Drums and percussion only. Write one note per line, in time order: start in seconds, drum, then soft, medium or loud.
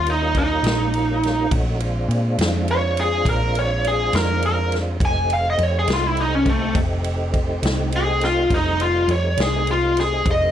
0.07 ride medium
0.35 kick medium
0.35 ride medium
0.64 snare loud
0.64 ride medium
0.94 ride medium
1.23 snare soft
1.23 ride medium
1.51 kick loud
1.51 ride medium
1.80 ride medium
2.11 ride medium
2.39 snare loud
2.39 ride medium
2.68 ride medium
2.97 ride medium
3.26 kick loud
3.26 ride medium
3.55 ride medium
3.84 ride medium
4.13 snare loud
4.13 ride medium
4.42 ride medium
4.72 snare soft
4.72 ride medium
5.00 kick loud
5.00 ride medium
5.30 ride medium
5.58 ride medium
5.88 snare loud
5.88 ride medium
6.17 ride medium
6.46 kick medium
6.46 ride medium
6.75 kick loud
6.75 ride medium
7.04 ride medium
7.34 kick medium
7.34 ride medium
7.63 snare loud
7.63 ride medium
7.92 ride medium
8.21 snare soft
8.21 ride medium
8.50 kick loud
8.50 ride medium
8.80 ride medium
9.09 ride medium
9.37 snare loud
9.37 ride medium
9.67 ride medium
9.97 snare soft
9.97 ride medium
10.26 kick loud
10.26 ride medium